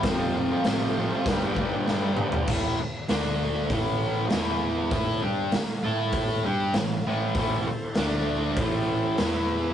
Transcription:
<<
  \new Staff \with { instrumentName = "Transistor combo organ" } { \time 4/4 \key a \minor \tempo 4 = 98 <f' a' c''>2 <g' b' d''>2 | r1 | r1 | <e' a' c''>4 <d' a' d''>4 <e' a' c''>4 <e' b' e''>4 | }
  \new Staff \with { instrumentName = "Distorted electric guitar" } { \clef bass \time 4/4 \key a \minor <f, c f>8 <f, c f>16 <c f>16 <f, c f>8 <f, c f>16 <c f>16 <g, d g>16 <d g>16 <g, d g>16 <d g>16 <g, d g>16 <d g>16 <g, d g>8 | <a, e a>8 r8 <d a d'>4 <a, e a>4 <e b e'>4 | <a e' a'>8 <g d' g'>8 r8 <a e' a'>4 <g d' g'>8 <a, e>8 <a, e a>8 | <a, e a>8 r8 <d a d'>4 <a, e a>4 <e b e'>4 | }
  \new Staff \with { instrumentName = "Picked electric bass" } { \clef bass \time 4/4 \key a \minor f,,4 a,,4 g,,4 g,,4 | a,,8 r8 d,4 a,,4 e,4 | a,8 g,8 r8 a,4 g,8 a,,8 a,,8 | a,,8 r8 d,4 a,,4 e,4 | }
  \new DrumStaff \with { instrumentName = "Drums" } \drummode { \time 4/4 <hho bd sn>4 <hho sn>4 <hho bd sn>8 bd8 sn8 toml16 tomfh16 | <cymc bd>4 <hho sn>4 <hho bd>4 <hho sn>4 | <hho bd>4 <hho sn>4 <hho bd>4 <hho sn>4 | <hho bd>4 <hho sn>4 <hho bd>4 <hho sn>4 | }
>>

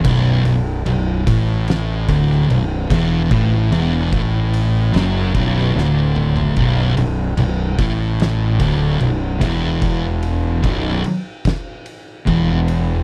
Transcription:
<<
  \new Staff \with { instrumentName = "Distorted electric guitar" } { \clef bass \time 4/4 \key b \minor \tempo 4 = 74 b,,8 b,,8 b,,8 a,4 d,8 b,,8 e,8 | a,8 e,8 a,4 fis,8 b,,8 d,4 | b,,8 b,,8 b,,8 a,4 d,8 b,,8 e,8~ | e,4 b,,8 r4. e,4 | }
  \new Staff \with { instrumentName = "Distorted electric guitar" } { \clef bass \time 4/4 \key b \minor b,,8 b,,8 b,,8 a,4 d,8 b,,8 e,8 | a,8 e,8 a,4 fis,8 b,,8 d,4 | b,,8 b,,8 b,,8 a,4 d,8 b,,8 e,8~ | e,4 b,,8 r4. e,4 | }
  \new Staff \with { instrumentName = "Fingered electric bass" } { \clef bass \time 4/4 \key b \minor b,,,8 b,,,8 b,,,8 a,,4 d,,8 b,,,8 e,,8 | a,,8 e,,8 a,,4 fis,,8 b,,,8 d,,4 | b,,,8 b,,,8 b,,,8 a,,4 d,,8 b,,,8 e,,8~ | e,,4 b,,,8 r4. e,,4 | }
  \new DrumStaff \with { instrumentName = "Drums" } \drummode { \time 4/4 <cymc bd>8 cymr8 cymr8 <bd cymr>8 <cymr sn>8 <bd cymr>16 sn16 cymr8 <bd cymr>8 | <bd cymr>8 cymr8 <bd cymr>8 cymr8 <cymr sn>8 <bd cymr>16 sn16 sn8 toml16 tomfh16 | <bd cymr>8 cymr8 cymr8 <bd cymr>8 <cymr sn>8 <bd cymr>8 cymr8 <bd cymr>8 | <bd cymr>8 cymr8 <bd cymr>8 cymr8 <bd cymr sn>8 cymr8 <bd cymr>8 cymr8 | }
>>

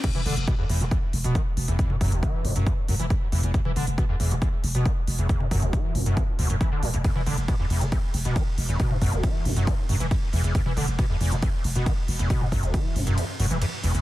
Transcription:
<<
  \new Staff \with { instrumentName = "Acid bass" } { \clef bass \time 4/4 \key e \minor \tempo 4 = 137 e,16 e16 d16 r16 b,16 e,16 e,16 g16 e,16 r8 b,16 e16 r8 e,16 | e,16 g,16 fis,16 d,16 e8 e,16 fis,16 e,16 r16 fis,16 e16 e,16 r16 e,16 e,16 | e,16 e16 d16 r16 b,16 e,16 e,16 g16 e,16 r8 b,16 e16 r8 e,16 | e,16 g,16 fis,16 d,16 e8 e,16 fis,16 e,16 r16 d,16 fis,16 e16 d16 a,16 e,16 |
e,16 e16 d16 r16 b,16 e,16 e,16 g16 e,16 r8 b,16 e16 r8 e,16 | b,16 g,16 fis,16 d,16 e8 e,16 fis,16 e,16 r16 fis,16 e16 e,16 r16 e,16 e,16 | e,16 e16 d16 r16 b,16 e,16 e,16 g16 e,16 r8 b,16 e16 r8 e,16 | b,16 g,16 fis,16 d,16 e8 e,16 fis,16 e,16 r16 fis,16 e16 e,16 r16 e,16 e,16 | }
  \new Staff \with { instrumentName = "808-style bass" } { \clef bass \time 4/4 \key e \minor r8 e,,16 e,,16 r8 e,,16 e,,16 r8 e,,16 e,,16 r8 e,,16 e,,16 | r8 e,,16 e,,16 r8 e,,16 e,,16 r8 e,,16 e,,16 r8 e,,16 e,,16 | r8 e,,16 e,,16 r8 e,,16 e,,16 r8 e,,16 e,,16 r8 e,,16 e,,16 | r8 e,,16 e,,16 r8 e,,16 e,,16 r8 e,,16 e,,16 r8 e,,16 e,,16 |
r8 e,,16 e,,16 r8 e,,16 e,,16 r8 e,,16 e,,16 r8 e,,16 e,,16 | r8 e,,16 e,,16 r8 e,,16 e,,16 r8 e,,16 e,,16 r8 e,,16 e,,16 | r8 e,,16 e,,16 r8 e,,16 e,,16 r8 e,,16 e,,16 r8 e,,16 e,,16 | r8 e,,16 e,,16 r8 e,,16 e,,16 r8 e,,16 e,,16 r8 e,,16 e,,16 | }
  \new DrumStaff \with { instrumentName = "Drums" } \drummode { \time 4/4 <cymc hh bd toml>16 toml16 hho16 hh16 <hh bd>8 hho16 hh16 <hh bd>8 hho16 hh16 <hh bd>8 hho16 hh16 | <hh bd toml>16 toml16 <hho bd>16 hh16 <hh bd>8 hho16 hh16 <hh bd>8 hho16 hh16 <hh bd>8 hho16 hh16 | <hh bd toml>16 toml16 hho16 hh16 <hh bd>8 hho16 hh16 <hh bd>8 hho16 hh16 <hh bd>8 hho16 hh16 | <hh bd toml>16 toml16 <hho bd>16 <hh toml>16 <hh bd>8 hho16 hh16 <hh bd>8 hho16 hh16 <hh bd>8 hho16 hh16 |
<hh bd cymr toml>16 toml16 hho16 hh16 <hh bd cymr>8 hho16 hh16 <hh bd cymr>8 hho16 hh16 <hh bd cymr>8 hho16 hh16 | <hh bd cymr toml>16 toml16 <hho bd>16 hh16 <hh bd cymr>8 hho16 hh16 <hh bd cymr>8 hho16 hh16 <hh bd cymr>8 hho16 hh16 | <hh bd cymr toml>16 toml16 hho16 hh16 <hh bd cymr>8 hho16 hh16 <hh bd cymr>8 hho16 hh16 <hh bd cymr>8 hho16 hh16 | <hh bd cymr toml>16 toml16 <hho bd>16 hh16 <hh bd cymr>8 hho16 hh16 <hh cymr>8 hho16 hh16 <hh cymr>8 hho16 hh16 | }
>>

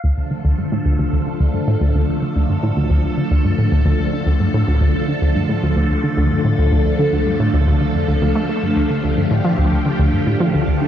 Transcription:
<<
  \new Staff \with { instrumentName = "Synth texture" } { \time 4/4 \key d \minor \tempo 4 = 110 f''1~ | f''1~ | f''1~ | f''1~ |
f''1 | }
  \new Staff \with { instrumentName = "String machine" } { \time 4/4 \key d \minor << { a'1~ | a'1~ | a'1~ | a'1 |
g'1 | } \\ { <d f a>1~ | <d f a>1~ | <d f a>1~ | <d f a>1~ |
<d f a>1 | } >> }
  \new Staff \with { instrumentName = "Synth arpeggio sound" } { \clef bass \time 4/4 \key d \minor d,16 d,16 d16 d,16 g,16 a,16 d,16 d,16 d,16 d16 d,16 g,16 a,16 d,16 d,16 d,16 | d16 d,16 g,16 a,16 d,16 d,16 d,16 d16 d,16 g,16 a,16 d,16 d,16 d,16 d16 d,16 | g,16 a,16 d,16 d,16 d,16 d16 d,16 g,16 a,16 d,16 d,16 d,16 d16 d,16 g,16 a,16 | d,16 d,16 d,16 d16 d,16 g,16 a,16 d,16 d,16 d,16 f,16 d,16 d,16 a16 a16 g,16 |
d,16 d16 d,16 g,16 a,16 f16 d,16 d,16 d16 d,16 g,16 a,16 f16 d,16 d,16 d16 | }
>>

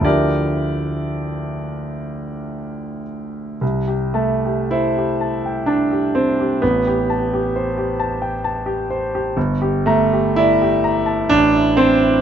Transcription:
\new Staff \with { instrumentName = "Grand piano" } { \time 3/4 \key c \mixolydian \tempo 4 = 63 << { <g' bes' d''>2~ <g' bes' d''>8 r8 | r8 a8 e'4 d'8 c'8 | b2~ b8 r8 | r8 a8 e'4 d'8 c'8 | } \\ { <d, f a d' e'>2. | c,16 g'16 a''16 g'16 c''16 g'16 a''16 g''16 a''16 g'16 c''16 g'16 | a,,16 g'16 a''16 g'16 c''16 g'16 a''16 g''16 a''16 g'16 c''16 g'16 | g,,16 g'16 bes''16 g'16 d''16 g'16 bes''16 a''16 a,,16 e'16 c'''16 e'16 | } >> }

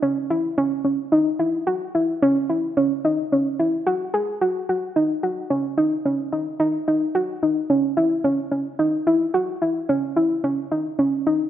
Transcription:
\new Staff \with { instrumentName = "Synth pluck" } { \time 7/4 \key fis \dorian \tempo 4 = 110 cis'8 e'8 cis'8 cis'8 dis'8 e'8 fis'8 e'8 cis'8 e'8 cis'8 dis'8 cis'8 e'8 | fis'8 gis'8 fis'8 fis'8 dis'8 fis'8 cis'8 dis'8 cis'8 dis'8 dis'8 dis'8 fis'8 dis'8 | cis'8 e'8 cis'8 cis'8 dis'8 e'8 fis'8 e'8 cis'8 e'8 cis'8 dis'8 cis'8 dis'8 | }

